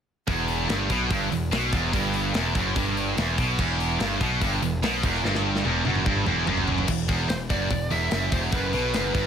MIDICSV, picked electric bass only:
0, 0, Header, 1, 2, 480
1, 0, Start_track
1, 0, Key_signature, 1, "minor"
1, 0, Tempo, 412655
1, 328, Time_signature, 4, 2, 24, 8
1, 10779, End_track
2, 0, Start_track
2, 0, Title_t, "Picked electric bass"
2, 0, Program_c, 0, 34
2, 325, Note_on_c, 0, 28, 90
2, 774, Note_off_c, 0, 28, 0
2, 811, Note_on_c, 0, 31, 85
2, 1034, Note_off_c, 0, 31, 0
2, 1045, Note_on_c, 0, 35, 89
2, 1271, Note_off_c, 0, 35, 0
2, 1284, Note_on_c, 0, 31, 86
2, 1511, Note_off_c, 0, 31, 0
2, 1528, Note_on_c, 0, 28, 81
2, 1753, Note_off_c, 0, 28, 0
2, 1770, Note_on_c, 0, 35, 94
2, 1994, Note_off_c, 0, 35, 0
2, 2009, Note_on_c, 0, 28, 94
2, 2234, Note_off_c, 0, 28, 0
2, 2249, Note_on_c, 0, 31, 88
2, 2698, Note_off_c, 0, 31, 0
2, 2721, Note_on_c, 0, 28, 93
2, 2950, Note_off_c, 0, 28, 0
2, 2970, Note_on_c, 0, 30, 87
2, 3195, Note_off_c, 0, 30, 0
2, 3211, Note_on_c, 0, 31, 92
2, 3659, Note_off_c, 0, 31, 0
2, 3687, Note_on_c, 0, 28, 89
2, 3914, Note_off_c, 0, 28, 0
2, 3933, Note_on_c, 0, 35, 96
2, 4157, Note_off_c, 0, 35, 0
2, 4172, Note_on_c, 0, 28, 91
2, 4619, Note_off_c, 0, 28, 0
2, 4654, Note_on_c, 0, 31, 91
2, 4877, Note_off_c, 0, 31, 0
2, 4894, Note_on_c, 0, 35, 89
2, 5117, Note_off_c, 0, 35, 0
2, 5136, Note_on_c, 0, 31, 92
2, 5358, Note_off_c, 0, 31, 0
2, 5373, Note_on_c, 0, 28, 86
2, 5596, Note_off_c, 0, 28, 0
2, 5609, Note_on_c, 0, 35, 95
2, 5834, Note_off_c, 0, 35, 0
2, 5858, Note_on_c, 0, 28, 94
2, 6078, Note_off_c, 0, 28, 0
2, 6091, Note_on_c, 0, 31, 87
2, 6538, Note_off_c, 0, 31, 0
2, 6566, Note_on_c, 0, 28, 91
2, 6791, Note_off_c, 0, 28, 0
2, 6805, Note_on_c, 0, 30, 90
2, 7031, Note_off_c, 0, 30, 0
2, 7052, Note_on_c, 0, 31, 92
2, 7274, Note_off_c, 0, 31, 0
2, 7279, Note_on_c, 0, 28, 99
2, 7507, Note_off_c, 0, 28, 0
2, 7519, Note_on_c, 0, 30, 84
2, 7970, Note_off_c, 0, 30, 0
2, 8005, Note_on_c, 0, 28, 77
2, 8230, Note_off_c, 0, 28, 0
2, 8246, Note_on_c, 0, 28, 80
2, 8470, Note_off_c, 0, 28, 0
2, 8476, Note_on_c, 0, 28, 75
2, 8704, Note_off_c, 0, 28, 0
2, 8725, Note_on_c, 0, 30, 78
2, 8949, Note_off_c, 0, 30, 0
2, 8964, Note_on_c, 0, 28, 67
2, 9188, Note_off_c, 0, 28, 0
2, 9205, Note_on_c, 0, 28, 92
2, 9429, Note_off_c, 0, 28, 0
2, 9440, Note_on_c, 0, 30, 89
2, 9666, Note_off_c, 0, 30, 0
2, 9677, Note_on_c, 0, 28, 95
2, 9904, Note_off_c, 0, 28, 0
2, 9914, Note_on_c, 0, 30, 86
2, 10142, Note_off_c, 0, 30, 0
2, 10158, Note_on_c, 0, 35, 90
2, 10384, Note_off_c, 0, 35, 0
2, 10401, Note_on_c, 0, 30, 87
2, 10626, Note_off_c, 0, 30, 0
2, 10637, Note_on_c, 0, 31, 84
2, 10779, Note_off_c, 0, 31, 0
2, 10779, End_track
0, 0, End_of_file